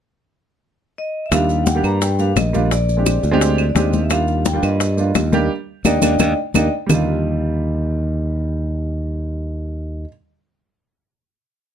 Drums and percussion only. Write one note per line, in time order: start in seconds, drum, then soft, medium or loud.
1.32 high bongo medium
1.32 high conga soft
1.32 claves medium
1.32 maracas medium
1.49 high conga soft
1.49 maracas soft
1.66 high bongo soft
1.66 high conga medium
1.66 maracas medium
1.84 high conga soft
1.84 claves medium
1.84 maracas soft
2.02 high bongo medium
2.02 high conga soft
2.02 maracas medium
2.19 high conga soft
2.19 maracas soft
2.37 high bongo medium
2.37 low bongo medium
2.37 high conga medium
2.37 claves medium
2.37 maracas medium
2.54 high conga medium
2.54 maracas soft
2.71 high bongo medium
2.71 maracas medium
2.89 high bongo soft
2.89 high conga soft
2.89 maracas soft
3.06 high bongo medium
3.06 high conga medium
3.06 claves medium
3.06 maracas medium
3.23 high bongo soft
3.23 maracas soft
3.41 high bongo medium
3.41 high conga soft
3.41 maracas medium
3.58 high bongo soft
3.58 high conga soft
3.58 claves medium
3.58 maracas soft
3.76 high bongo medium
3.76 low bongo medium
3.76 high conga medium
3.76 maracas medium
3.93 high conga medium
3.93 maracas soft
4.10 high bongo medium
4.10 high conga soft
4.10 claves medium
4.10 maracas medium
4.28 high conga soft
4.28 maracas soft
4.45 high bongo medium
4.45 high conga loud
4.45 maracas medium
4.63 high conga soft
4.63 claves medium
4.63 maracas soft
4.80 high bongo medium
4.80 high conga soft
4.80 maracas medium
4.98 high conga soft
4.98 maracas soft
5.15 high bongo medium
5.15 low bongo medium
5.15 high conga medium
5.15 claves medium
5.15 maracas medium
5.33 high conga medium
5.33 maracas soft
5.85 low bongo medium
5.85 high conga medium
5.85 claves medium
5.85 maracas medium
6.02 low bongo medium
6.02 high conga loud
6.02 claves medium
6.02 maracas loud
6.19 low bongo loud
6.19 high conga loud
6.19 claves loud
6.19 maracas medium
6.54 low bongo loud
6.54 high conga medium
6.54 claves loud
6.54 maracas loud
6.89 low bongo loud
6.89 low conga loud
6.89 claves medium
6.89 maracas medium